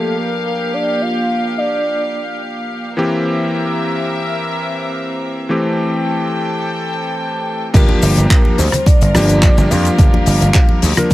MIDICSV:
0, 0, Header, 1, 7, 480
1, 0, Start_track
1, 0, Tempo, 560748
1, 869, Time_signature, 4, 2, 24, 8
1, 9535, End_track
2, 0, Start_track
2, 0, Title_t, "Soft synth lead"
2, 0, Program_c, 0, 80
2, 0, Note_on_c, 0, 69, 86
2, 149, Note_on_c, 0, 70, 93
2, 162, Note_off_c, 0, 69, 0
2, 628, Note_on_c, 0, 74, 96
2, 641, Note_off_c, 0, 70, 0
2, 870, Note_on_c, 0, 77, 114
2, 882, Note_off_c, 0, 74, 0
2, 1350, Note_on_c, 0, 74, 93
2, 1363, Note_off_c, 0, 77, 0
2, 2070, Note_off_c, 0, 74, 0
2, 6627, Note_on_c, 0, 70, 93
2, 6851, Note_off_c, 0, 70, 0
2, 6867, Note_on_c, 0, 70, 85
2, 7091, Note_off_c, 0, 70, 0
2, 7108, Note_on_c, 0, 70, 90
2, 7346, Note_on_c, 0, 72, 92
2, 7359, Note_off_c, 0, 70, 0
2, 7586, Note_on_c, 0, 74, 107
2, 7599, Note_off_c, 0, 72, 0
2, 8305, Note_on_c, 0, 77, 111
2, 8318, Note_off_c, 0, 74, 0
2, 9535, Note_off_c, 0, 77, 0
2, 9535, End_track
3, 0, Start_track
3, 0, Title_t, "String section"
3, 0, Program_c, 1, 48
3, 0, Note_on_c, 1, 58, 72
3, 0, Note_on_c, 1, 67, 66
3, 0, Note_on_c, 1, 77, 77
3, 2513, Note_off_c, 1, 77, 0
3, 2514, Note_off_c, 1, 58, 0
3, 2514, Note_off_c, 1, 67, 0
3, 2551, Note_on_c, 1, 70, 68
3, 2553, Note_on_c, 1, 60, 68
3, 2554, Note_on_c, 1, 76, 80
3, 4688, Note_off_c, 1, 70, 0
3, 4690, Note_off_c, 1, 76, 0
3, 4709, Note_on_c, 1, 69, 67
3, 4709, Note_on_c, 1, 79, 83
3, 6597, Note_off_c, 1, 60, 0
3, 6610, Note_off_c, 1, 69, 0
3, 6610, Note_off_c, 1, 79, 0
3, 6624, Note_on_c, 1, 55, 81
3, 6625, Note_on_c, 1, 65, 73
3, 6625, Note_on_c, 1, 70, 88
3, 9535, Note_off_c, 1, 55, 0
3, 9535, Note_off_c, 1, 65, 0
3, 9535, Note_off_c, 1, 70, 0
3, 9535, End_track
4, 0, Start_track
4, 0, Title_t, "Electric grand piano"
4, 0, Program_c, 2, 2
4, 0, Note_on_c, 2, 53, 69
4, 0, Note_on_c, 2, 58, 62
4, 0, Note_on_c, 2, 62, 59
4, 0, Note_on_c, 2, 67, 74
4, 2519, Note_off_c, 2, 53, 0
4, 2521, Note_off_c, 2, 58, 0
4, 2524, Note_off_c, 2, 62, 0
4, 2527, Note_off_c, 2, 67, 0
4, 2540, Note_on_c, 2, 52, 75
4, 2544, Note_on_c, 2, 58, 67
4, 2550, Note_on_c, 2, 60, 67
4, 2557, Note_on_c, 2, 67, 85
4, 4677, Note_off_c, 2, 52, 0
4, 4679, Note_off_c, 2, 58, 0
4, 4682, Note_off_c, 2, 60, 0
4, 4685, Note_off_c, 2, 67, 0
4, 4700, Note_on_c, 2, 52, 70
4, 4705, Note_on_c, 2, 57, 62
4, 4711, Note_on_c, 2, 60, 67
4, 4716, Note_on_c, 2, 67, 78
4, 6597, Note_off_c, 2, 52, 0
4, 6600, Note_off_c, 2, 57, 0
4, 6602, Note_off_c, 2, 60, 0
4, 6605, Note_off_c, 2, 67, 0
4, 6622, Note_on_c, 2, 53, 98
4, 6629, Note_on_c, 2, 58, 95
4, 6634, Note_on_c, 2, 62, 88
4, 6639, Note_on_c, 2, 67, 113
4, 7346, Note_off_c, 2, 53, 0
4, 7349, Note_off_c, 2, 58, 0
4, 7352, Note_off_c, 2, 62, 0
4, 7354, Note_off_c, 2, 67, 0
4, 7827, Note_on_c, 2, 53, 102
4, 7830, Note_on_c, 2, 58, 95
4, 7834, Note_on_c, 2, 62, 94
4, 7836, Note_on_c, 2, 67, 108
4, 8164, Note_off_c, 2, 53, 0
4, 8165, Note_off_c, 2, 58, 0
4, 8167, Note_off_c, 2, 62, 0
4, 8168, Note_off_c, 2, 67, 0
4, 8192, Note_on_c, 2, 53, 84
4, 8195, Note_on_c, 2, 58, 78
4, 8199, Note_on_c, 2, 62, 77
4, 8201, Note_on_c, 2, 67, 97
4, 8280, Note_off_c, 2, 53, 0
4, 8282, Note_off_c, 2, 58, 0
4, 8284, Note_off_c, 2, 62, 0
4, 8285, Note_off_c, 2, 67, 0
4, 8304, Note_on_c, 2, 53, 85
4, 8306, Note_on_c, 2, 58, 74
4, 8308, Note_on_c, 2, 62, 80
4, 8313, Note_on_c, 2, 67, 94
4, 8519, Note_off_c, 2, 53, 0
4, 8520, Note_off_c, 2, 58, 0
4, 8521, Note_off_c, 2, 62, 0
4, 8523, Note_off_c, 2, 67, 0
4, 8541, Note_on_c, 2, 53, 80
4, 8546, Note_on_c, 2, 58, 72
4, 8551, Note_on_c, 2, 62, 67
4, 8558, Note_on_c, 2, 67, 90
4, 9361, Note_off_c, 2, 53, 0
4, 9363, Note_off_c, 2, 58, 0
4, 9366, Note_off_c, 2, 62, 0
4, 9369, Note_off_c, 2, 67, 0
4, 9390, Note_on_c, 2, 53, 81
4, 9393, Note_on_c, 2, 58, 79
4, 9396, Note_on_c, 2, 62, 77
4, 9400, Note_on_c, 2, 70, 92
4, 9535, Note_off_c, 2, 53, 0
4, 9535, Note_off_c, 2, 58, 0
4, 9535, Note_off_c, 2, 62, 0
4, 9535, Note_off_c, 2, 70, 0
4, 9535, End_track
5, 0, Start_track
5, 0, Title_t, "Slap bass"
5, 0, Program_c, 3, 36
5, 6627, Note_on_c, 3, 31, 105
5, 6704, Note_off_c, 3, 31, 0
5, 6869, Note_on_c, 3, 31, 89
5, 6945, Note_off_c, 3, 31, 0
5, 6995, Note_on_c, 3, 31, 103
5, 7064, Note_off_c, 3, 31, 0
5, 7350, Note_on_c, 3, 38, 93
5, 7426, Note_off_c, 3, 38, 0
5, 7717, Note_on_c, 3, 31, 79
5, 7785, Note_off_c, 3, 31, 0
5, 7834, Note_on_c, 3, 31, 80
5, 8118, Note_off_c, 3, 31, 0
5, 8196, Note_on_c, 3, 31, 104
5, 8265, Note_off_c, 3, 31, 0
5, 8310, Note_on_c, 3, 41, 87
5, 8459, Note_off_c, 3, 41, 0
5, 8548, Note_on_c, 3, 31, 102
5, 8625, Note_off_c, 3, 31, 0
5, 8789, Note_on_c, 3, 31, 92
5, 8865, Note_off_c, 3, 31, 0
5, 8914, Note_on_c, 3, 31, 106
5, 8984, Note_off_c, 3, 31, 0
5, 9268, Note_on_c, 3, 38, 94
5, 9345, Note_off_c, 3, 38, 0
5, 9535, End_track
6, 0, Start_track
6, 0, Title_t, "Muted slap bass strokes"
6, 7589, Note_on_c, 9, 29, 46
6, 7675, Note_off_c, 9, 29, 0
6, 9535, End_track
7, 0, Start_track
7, 0, Title_t, "Drums"
7, 6627, Note_on_c, 9, 36, 117
7, 6632, Note_on_c, 9, 42, 96
7, 6633, Note_on_c, 9, 49, 97
7, 6641, Note_on_c, 9, 82, 59
7, 6712, Note_off_c, 9, 36, 0
7, 6718, Note_off_c, 9, 42, 0
7, 6719, Note_off_c, 9, 49, 0
7, 6726, Note_off_c, 9, 82, 0
7, 6752, Note_on_c, 9, 63, 100
7, 6837, Note_off_c, 9, 63, 0
7, 6867, Note_on_c, 9, 82, 79
7, 6869, Note_on_c, 9, 46, 119
7, 6953, Note_off_c, 9, 82, 0
7, 6954, Note_off_c, 9, 46, 0
7, 6992, Note_on_c, 9, 42, 60
7, 6993, Note_on_c, 9, 60, 52
7, 7002, Note_on_c, 9, 82, 52
7, 7077, Note_off_c, 9, 42, 0
7, 7079, Note_off_c, 9, 60, 0
7, 7087, Note_off_c, 9, 82, 0
7, 7107, Note_on_c, 9, 36, 119
7, 7109, Note_on_c, 9, 42, 92
7, 7113, Note_on_c, 9, 39, 117
7, 7116, Note_on_c, 9, 82, 60
7, 7193, Note_off_c, 9, 36, 0
7, 7194, Note_off_c, 9, 42, 0
7, 7198, Note_off_c, 9, 39, 0
7, 7201, Note_off_c, 9, 82, 0
7, 7233, Note_on_c, 9, 63, 70
7, 7319, Note_off_c, 9, 63, 0
7, 7346, Note_on_c, 9, 46, 103
7, 7352, Note_on_c, 9, 60, 87
7, 7356, Note_on_c, 9, 82, 89
7, 7431, Note_off_c, 9, 46, 0
7, 7438, Note_off_c, 9, 60, 0
7, 7441, Note_off_c, 9, 82, 0
7, 7467, Note_on_c, 9, 37, 73
7, 7476, Note_on_c, 9, 64, 80
7, 7479, Note_on_c, 9, 42, 66
7, 7479, Note_on_c, 9, 82, 47
7, 7553, Note_off_c, 9, 37, 0
7, 7561, Note_off_c, 9, 64, 0
7, 7564, Note_off_c, 9, 42, 0
7, 7565, Note_off_c, 9, 82, 0
7, 7586, Note_on_c, 9, 63, 93
7, 7588, Note_on_c, 9, 36, 118
7, 7595, Note_on_c, 9, 42, 90
7, 7597, Note_on_c, 9, 82, 55
7, 7672, Note_off_c, 9, 63, 0
7, 7674, Note_off_c, 9, 36, 0
7, 7680, Note_off_c, 9, 42, 0
7, 7682, Note_off_c, 9, 82, 0
7, 7714, Note_on_c, 9, 82, 45
7, 7717, Note_on_c, 9, 42, 58
7, 7799, Note_off_c, 9, 82, 0
7, 7803, Note_off_c, 9, 42, 0
7, 7829, Note_on_c, 9, 46, 105
7, 7830, Note_on_c, 9, 37, 76
7, 7830, Note_on_c, 9, 60, 61
7, 7841, Note_on_c, 9, 82, 92
7, 7914, Note_off_c, 9, 46, 0
7, 7916, Note_off_c, 9, 37, 0
7, 7916, Note_off_c, 9, 60, 0
7, 7926, Note_off_c, 9, 82, 0
7, 7955, Note_on_c, 9, 42, 70
7, 7958, Note_on_c, 9, 82, 54
7, 7960, Note_on_c, 9, 63, 68
7, 8040, Note_off_c, 9, 42, 0
7, 8043, Note_off_c, 9, 82, 0
7, 8046, Note_off_c, 9, 63, 0
7, 8068, Note_on_c, 9, 36, 117
7, 8068, Note_on_c, 9, 39, 125
7, 8070, Note_on_c, 9, 82, 58
7, 8074, Note_on_c, 9, 42, 85
7, 8153, Note_off_c, 9, 36, 0
7, 8154, Note_off_c, 9, 39, 0
7, 8155, Note_off_c, 9, 82, 0
7, 8160, Note_off_c, 9, 42, 0
7, 8198, Note_on_c, 9, 82, 54
7, 8199, Note_on_c, 9, 60, 89
7, 8284, Note_off_c, 9, 82, 0
7, 8285, Note_off_c, 9, 60, 0
7, 8312, Note_on_c, 9, 46, 88
7, 8312, Note_on_c, 9, 64, 90
7, 8315, Note_on_c, 9, 82, 78
7, 8316, Note_on_c, 9, 63, 89
7, 8398, Note_off_c, 9, 46, 0
7, 8398, Note_off_c, 9, 64, 0
7, 8401, Note_off_c, 9, 63, 0
7, 8401, Note_off_c, 9, 82, 0
7, 8432, Note_on_c, 9, 42, 72
7, 8442, Note_on_c, 9, 82, 52
7, 8518, Note_off_c, 9, 42, 0
7, 8527, Note_off_c, 9, 82, 0
7, 8547, Note_on_c, 9, 36, 120
7, 8551, Note_on_c, 9, 42, 93
7, 8555, Note_on_c, 9, 82, 58
7, 8633, Note_off_c, 9, 36, 0
7, 8636, Note_off_c, 9, 42, 0
7, 8640, Note_off_c, 9, 82, 0
7, 8677, Note_on_c, 9, 63, 103
7, 8682, Note_on_c, 9, 60, 52
7, 8763, Note_off_c, 9, 63, 0
7, 8768, Note_off_c, 9, 60, 0
7, 8783, Note_on_c, 9, 46, 102
7, 8790, Note_on_c, 9, 82, 79
7, 8869, Note_off_c, 9, 46, 0
7, 8876, Note_off_c, 9, 82, 0
7, 8917, Note_on_c, 9, 82, 49
7, 8920, Note_on_c, 9, 42, 66
7, 9002, Note_off_c, 9, 82, 0
7, 9005, Note_off_c, 9, 42, 0
7, 9023, Note_on_c, 9, 39, 126
7, 9026, Note_on_c, 9, 42, 84
7, 9026, Note_on_c, 9, 60, 82
7, 9028, Note_on_c, 9, 36, 120
7, 9030, Note_on_c, 9, 82, 58
7, 9108, Note_off_c, 9, 39, 0
7, 9112, Note_off_c, 9, 42, 0
7, 9112, Note_off_c, 9, 60, 0
7, 9113, Note_off_c, 9, 36, 0
7, 9115, Note_off_c, 9, 82, 0
7, 9147, Note_on_c, 9, 63, 71
7, 9233, Note_off_c, 9, 63, 0
7, 9264, Note_on_c, 9, 46, 104
7, 9273, Note_on_c, 9, 82, 89
7, 9350, Note_off_c, 9, 46, 0
7, 9359, Note_off_c, 9, 82, 0
7, 9393, Note_on_c, 9, 37, 82
7, 9394, Note_on_c, 9, 64, 84
7, 9394, Note_on_c, 9, 82, 50
7, 9396, Note_on_c, 9, 42, 67
7, 9479, Note_off_c, 9, 37, 0
7, 9479, Note_off_c, 9, 82, 0
7, 9480, Note_off_c, 9, 64, 0
7, 9482, Note_off_c, 9, 42, 0
7, 9502, Note_on_c, 9, 60, 52
7, 9508, Note_on_c, 9, 36, 120
7, 9535, Note_off_c, 9, 36, 0
7, 9535, Note_off_c, 9, 60, 0
7, 9535, End_track
0, 0, End_of_file